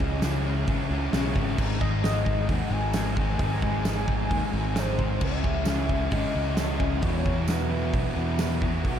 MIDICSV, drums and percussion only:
0, 0, Header, 1, 2, 480
1, 0, Start_track
1, 0, Key_signature, 4, "major"
1, 0, Tempo, 454201
1, 1675, Time_signature, 4, 2, 24, 8
1, 9503, End_track
2, 0, Start_track
2, 0, Title_t, "Drums"
2, 1, Note_on_c, 9, 36, 90
2, 107, Note_off_c, 9, 36, 0
2, 233, Note_on_c, 9, 46, 65
2, 234, Note_on_c, 9, 38, 105
2, 236, Note_on_c, 9, 54, 90
2, 339, Note_off_c, 9, 46, 0
2, 340, Note_off_c, 9, 38, 0
2, 342, Note_off_c, 9, 54, 0
2, 710, Note_on_c, 9, 46, 55
2, 717, Note_on_c, 9, 36, 115
2, 816, Note_off_c, 9, 46, 0
2, 823, Note_off_c, 9, 36, 0
2, 1195, Note_on_c, 9, 46, 72
2, 1196, Note_on_c, 9, 38, 115
2, 1205, Note_on_c, 9, 54, 90
2, 1300, Note_off_c, 9, 46, 0
2, 1301, Note_off_c, 9, 38, 0
2, 1311, Note_off_c, 9, 54, 0
2, 1434, Note_on_c, 9, 36, 94
2, 1539, Note_off_c, 9, 36, 0
2, 1674, Note_on_c, 9, 36, 119
2, 1674, Note_on_c, 9, 49, 115
2, 1780, Note_off_c, 9, 36, 0
2, 1780, Note_off_c, 9, 49, 0
2, 1914, Note_on_c, 9, 36, 97
2, 2019, Note_off_c, 9, 36, 0
2, 2156, Note_on_c, 9, 46, 64
2, 2157, Note_on_c, 9, 38, 116
2, 2168, Note_on_c, 9, 54, 91
2, 2262, Note_off_c, 9, 46, 0
2, 2263, Note_off_c, 9, 38, 0
2, 2274, Note_off_c, 9, 54, 0
2, 2392, Note_on_c, 9, 36, 84
2, 2498, Note_off_c, 9, 36, 0
2, 2630, Note_on_c, 9, 46, 60
2, 2632, Note_on_c, 9, 36, 103
2, 2736, Note_off_c, 9, 46, 0
2, 2737, Note_off_c, 9, 36, 0
2, 3101, Note_on_c, 9, 54, 102
2, 3107, Note_on_c, 9, 46, 68
2, 3108, Note_on_c, 9, 38, 120
2, 3207, Note_off_c, 9, 54, 0
2, 3213, Note_off_c, 9, 46, 0
2, 3214, Note_off_c, 9, 38, 0
2, 3349, Note_on_c, 9, 36, 92
2, 3454, Note_off_c, 9, 36, 0
2, 3583, Note_on_c, 9, 46, 67
2, 3587, Note_on_c, 9, 36, 120
2, 3689, Note_off_c, 9, 46, 0
2, 3692, Note_off_c, 9, 36, 0
2, 3830, Note_on_c, 9, 36, 94
2, 3935, Note_off_c, 9, 36, 0
2, 4069, Note_on_c, 9, 46, 58
2, 4070, Note_on_c, 9, 38, 112
2, 4070, Note_on_c, 9, 54, 99
2, 4175, Note_off_c, 9, 46, 0
2, 4176, Note_off_c, 9, 38, 0
2, 4176, Note_off_c, 9, 54, 0
2, 4311, Note_on_c, 9, 36, 89
2, 4416, Note_off_c, 9, 36, 0
2, 4554, Note_on_c, 9, 36, 109
2, 4554, Note_on_c, 9, 46, 58
2, 4660, Note_off_c, 9, 36, 0
2, 4660, Note_off_c, 9, 46, 0
2, 5029, Note_on_c, 9, 46, 63
2, 5030, Note_on_c, 9, 38, 116
2, 5037, Note_on_c, 9, 54, 123
2, 5134, Note_off_c, 9, 46, 0
2, 5136, Note_off_c, 9, 38, 0
2, 5143, Note_off_c, 9, 54, 0
2, 5272, Note_on_c, 9, 36, 88
2, 5378, Note_off_c, 9, 36, 0
2, 5505, Note_on_c, 9, 49, 108
2, 5512, Note_on_c, 9, 36, 121
2, 5611, Note_off_c, 9, 49, 0
2, 5617, Note_off_c, 9, 36, 0
2, 5752, Note_on_c, 9, 36, 95
2, 5857, Note_off_c, 9, 36, 0
2, 5975, Note_on_c, 9, 54, 116
2, 5983, Note_on_c, 9, 46, 69
2, 5984, Note_on_c, 9, 38, 104
2, 6080, Note_off_c, 9, 54, 0
2, 6089, Note_off_c, 9, 46, 0
2, 6090, Note_off_c, 9, 38, 0
2, 6229, Note_on_c, 9, 36, 83
2, 6334, Note_off_c, 9, 36, 0
2, 6461, Note_on_c, 9, 46, 65
2, 6467, Note_on_c, 9, 36, 107
2, 6566, Note_off_c, 9, 46, 0
2, 6573, Note_off_c, 9, 36, 0
2, 6943, Note_on_c, 9, 46, 64
2, 6944, Note_on_c, 9, 38, 121
2, 6948, Note_on_c, 9, 54, 114
2, 7048, Note_off_c, 9, 46, 0
2, 7049, Note_off_c, 9, 38, 0
2, 7054, Note_off_c, 9, 54, 0
2, 7186, Note_on_c, 9, 36, 95
2, 7292, Note_off_c, 9, 36, 0
2, 7421, Note_on_c, 9, 46, 63
2, 7428, Note_on_c, 9, 36, 123
2, 7527, Note_off_c, 9, 46, 0
2, 7533, Note_off_c, 9, 36, 0
2, 7670, Note_on_c, 9, 36, 87
2, 7776, Note_off_c, 9, 36, 0
2, 7900, Note_on_c, 9, 54, 96
2, 7910, Note_on_c, 9, 46, 57
2, 7911, Note_on_c, 9, 38, 114
2, 8006, Note_off_c, 9, 54, 0
2, 8015, Note_off_c, 9, 46, 0
2, 8016, Note_off_c, 9, 38, 0
2, 8384, Note_on_c, 9, 46, 57
2, 8387, Note_on_c, 9, 36, 102
2, 8489, Note_off_c, 9, 46, 0
2, 8492, Note_off_c, 9, 36, 0
2, 8864, Note_on_c, 9, 54, 114
2, 8866, Note_on_c, 9, 46, 64
2, 8867, Note_on_c, 9, 38, 124
2, 8969, Note_off_c, 9, 54, 0
2, 8971, Note_off_c, 9, 46, 0
2, 8972, Note_off_c, 9, 38, 0
2, 9108, Note_on_c, 9, 36, 90
2, 9214, Note_off_c, 9, 36, 0
2, 9350, Note_on_c, 9, 36, 105
2, 9350, Note_on_c, 9, 46, 84
2, 9456, Note_off_c, 9, 36, 0
2, 9456, Note_off_c, 9, 46, 0
2, 9503, End_track
0, 0, End_of_file